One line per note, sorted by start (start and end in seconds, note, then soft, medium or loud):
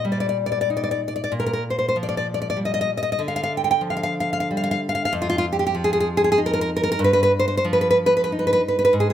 0.00 1.28 A#2 medium
0.05 1.01 G3 soft
0.12 0.19 D5 soft
0.20 0.28 D5 medium
0.29 0.37 D5 medium
0.46 0.51 D5 medium
0.52 0.60 D5 medium
0.61 0.69 D5 medium
0.70 1.34 D#4 soft
0.77 0.82 D5 soft
0.84 0.90 D5 medium
0.91 1.00 D5 medium
1.08 1.14 D5 medium
1.16 1.23 D5 medium
1.24 1.32 D5 medium
1.32 3.17 A#2 soft
1.40 1.45 A#4 medium
1.46 1.52 A#4 medium
1.53 1.63 A#4 medium
1.70 1.77 C5 medium
1.79 1.87 C5 soft
1.89 1.96 C5 medium
1.96 2.91 F3 soft
2.03 2.07 D5 soft
2.09 2.16 D5 medium
2.17 2.26 D5 medium
2.34 2.40 D5 medium
2.42 2.49 D5 medium
2.50 2.58 D5 medium
2.57 3.21 G3 soft
2.65 2.73 D#5 medium
2.74 2.80 D#5 medium
2.81 2.90 D#5 medium
2.97 3.01 D#5 medium
3.03 3.11 D#5 medium
3.12 3.21 D#5 medium
3.19 5.06 D3 medium
3.28 3.35 F5 medium
3.36 3.42 F5 medium
3.43 3.52 F5 medium
3.57 3.63 G5 medium
3.64 3.70 G5 medium
3.71 3.81 G5 medium
3.81 4.79 F3 soft
3.90 3.95 F5 medium
3.97 4.02 F5 medium
4.03 4.13 F5 medium
4.20 4.30 F5 medium
4.33 4.39 F5 medium
4.40 4.48 F5 medium
4.51 5.14 G3 soft
4.57 4.62 F5 medium
4.64 4.70 F5 medium
4.71 4.80 F5 medium
4.89 4.94 F5 medium
4.95 5.03 F5 medium
5.05 5.13 F5 medium
5.13 6.97 F2 medium
5.22 5.28 F4 medium
5.30 5.37 F4 medium
5.38 5.45 F4 medium
5.53 5.58 G4 medium
5.59 5.65 G4 medium
5.67 5.75 G4 medium
5.75 6.69 F3 medium
5.84 5.91 G#4 medium
5.93 5.99 G#4 medium
6.00 6.07 G#4 medium
6.17 6.23 G#4 medium
6.24 6.31 G#4 medium
6.32 6.39 G#4 medium
6.38 7.00 D#4 soft
6.46 6.52 A#4 medium
6.53 6.60 A#4 medium
6.61 6.69 A#4 medium
6.76 6.82 A#4 medium
6.83 6.90 A#4 medium
6.92 7.00 A#4 medium
6.99 8.88 G2 medium
7.04 7.12 B4 medium
7.13 7.22 B4 medium
7.23 7.31 B4 medium
7.39 7.47 C5 medium
7.48 7.56 C5 medium
7.57 7.64 C5 medium
7.65 8.61 F3 soft
7.73 7.80 B4 medium
7.81 7.88 B4 medium
7.91 7.97 B4 medium
8.06 8.13 B4 medium
8.17 8.22 B4 medium
8.24 8.30 B4 medium
8.32 8.95 D#4 soft
8.39 8.46 B4 medium
8.47 8.52 B4 medium
8.53 8.61 B4 medium
8.68 8.77 B4 medium
8.79 8.83 B4 medium
8.85 8.93 B4 medium
8.93 9.13 G#2 medium
9.00 9.09 G#4 medium